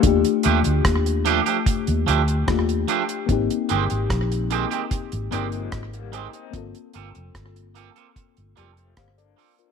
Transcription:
<<
  \new Staff \with { instrumentName = "FM electric piano" } { \time 4/4 \key ees \lydian \tempo 4 = 74 << { r1 | r1 | r2. <c'' f''>16 <a' d''>8 <f' bes'>16 | } \\ { <a d' f' g'>2. <a d' f' g'>4 | <bes c' ees' g'>2~ <bes c' ees' g'>8 <bes c' ees' bes'>4. | <bes c' f' a'>2.~ <bes c' f' a'>8 r8 | } >> }
  \new Staff \with { instrumentName = "Clean electric guitar" } { \time 4/4 \key ees \lydian r8 <f a d' g'>16 r8. <f a d' g'>16 <f a d' g'>16 r8 <f a d' g'>16 r8. <f a d' g'>16 r16 | r8 <ees aes c' g'>16 r8. <ees aes c' g'>16 <ees aes c' g'>16 r8 <ees aes c' g'>16 r8. <ees aes c' g'>16 r16 | r8 <bes c' f' a'>16 r8. <bes c' f' a'>16 <bes c' f' a'>16 r8 <bes c' f' a'>16 r8. <bes c' f' a'>16 r16 | }
  \new Staff \with { instrumentName = "Clean electric guitar" } { \clef bass \time 4/4 \key ees \lydian r1 | r2 r8 <ees g>16 <f aes>8 <g bes>16 <aes c'>16 <c' ees'>16~ | <c' ees'>16 r2 r16 g16 <f a>16 <g bes>16 <bes d'>8. | }
  \new Staff \with { instrumentName = "Fingered electric bass" } { \clef bass \time 4/4 \key ees \lydian ees,16 r16 ees,16 d,16 ees,8. r8 ees,16 d,8 ees,8 r8 | aes,,16 r16 g,,16 aes,,16 bes,,8. r8 aes,,16 g,,8 aes,,8. r16 | g,,16 r16 g,,16 f,,16 g,,8. r8 g,,16 f,,8 g,,8 r8 | }
  \new DrumStaff \with { instrumentName = "Drums" } \drummode { \time 4/4 <hh bd>16 hh16 hh16 hh16 <hh bd ss>16 hh16 hh16 hh16 <hh bd>16 hh16 hh16 hh16 <hh bd ss>16 hh16 hh16 hh16 | <hh bd>16 hh16 hh16 hh16 <hh bd ss>16 hh16 hh16 hh16 <hh bd>16 hh16 hh16 hh16 <hh bd ss>16 hh16 hh16 hh16 | <hh bd>16 hh16 hh16 hh16 <hh bd ss>16 hh16 hh16 hh16 <hh bd>16 hh16 hh16 hh16 <hh bd ss>16 hh16 hho16 hh16 | }
>>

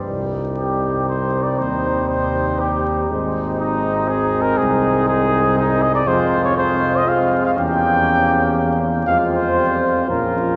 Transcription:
<<
  \new Staff \with { instrumentName = "Trumpet" } { \time 3/4 \key c \minor \tempo 4 = 120 r4 g'4 \tuplet 3/2 { c''4 d''8 } | c''4 c''4 g'4 | r4 ees'4 \tuplet 3/2 { aes'4 bes'8 } | aes'4 aes'4 ees'8 ees''16 d''16 |
\key f \minor c''8. des''16 c''8. ees''16 f''8. f''16 | g''2~ g''8 r8 | f''8 c''4. bes'4 | }
  \new Staff \with { instrumentName = "Flugelhorn" } { \time 3/4 \key c \minor ees'2.~ | ees'2. | ees'2.~ | ees'2. |
\key f \minor f'4 f'4 f'4 | g'2. | f'2 f'4 | }
  \new Staff \with { instrumentName = "French horn" } { \time 3/4 \key c \minor c'2.~ | c'2. | c'2.~ | c'2. |
\key f \minor c'4 c'4 c'4 | cis'2. | c'2 des'4 | }
  \new Staff \with { instrumentName = "Trombone" } { \clef bass \time 3/4 \key c \minor g2.~ | g2. | aes2.~ | aes2. |
\key f \minor aes4 aes4 aes4 | bes2. | aes4 g4 f4 | }
  \new Staff \with { instrumentName = "Tuba" } { \clef bass \time 3/4 \key c \minor c,2. | ees,2. | aes,,2. | c,2. |
\key f \minor f,2. | e,2. | f,2 bes,,4 | }
>>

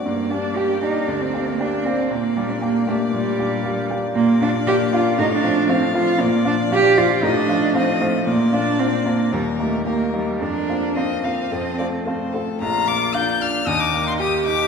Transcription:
<<
  \new Staff \with { instrumentName = "Violin" } { \time 4/4 \key g \minor \tempo 4 = 116 d''1 | d''1 | \key bes \major d''2 f''4 f''4 | d''2 ees''4 ees''4 |
d''2 bes'4 bes'4 | bes'4 ees''8 f''8 ees''8 d''8 c''8 a'8 | bes''8 d'''8 g'''8 f'''8 ees'''16 d'''8 c'''16 ees'''8 d'''8 | }
  \new Staff \with { instrumentName = "Cello" } { \time 4/4 \key g \minor bes8 d'8 g'8 ees'8 d'16 c'8 bes16 d'8 c'8 | bes8 g16 d'16 bes8 a8 g4. r8 | \key bes \major bes8 d'8 g'8 f'8 ees'16 d'8. c'8 f'8 | bes8 d'8 g'8 f'8 ees'16 d'8. c'8 a8 |
bes8 d'8 c'8 bes8 g8 a8 bes8 g8 | d'4 c'2~ c'8 r8 | f'4 d'4 ees'4 g'4 | }
  \new Staff \with { instrumentName = "Grand piano" } { \time 4/4 \key g \minor g,8 <bes d' g'>8 <bes d' g'>8 <bes d' g'>8 d,8 <bes d' g'>8 <bes d' g'>8 <bes d' g'>8 | bes,8 <bes d' g'>8 <bes d' g'>8 <bes d' g'>8 bes,8 <bes d' g'>8 <bes d' g'>8 <bes d' g'>8 | \key bes \major bes,8 <bes d' f'>8 <bes d' f'>8 <bes d' f'>8 a,8 <f c' f'>8 <f c' f'>8 <f c' f'>8 | bes,8 <f d' f'>8 <f d' f'>8 <f d' f'>8 a,8 <f ees' f'>8 <f ees' f'>8 <f ees' f'>8 |
bes,8 <bes d' f'>8 <bes d' f'>8 <bes d' f'>8 ees,8 <bes ees' g'>8 <bes ees' g'>8 <bes ees' g'>8 | f,8 <bes c' f'>8 <bes c' f'>8 <bes c' f'>8 f,8 <a c' f'>8 <a c' f'>8 <a c' f'>8 | bes,,8 bes8 f'8 d'8 ees,8 bes8 g'8 ees'8 | }
>>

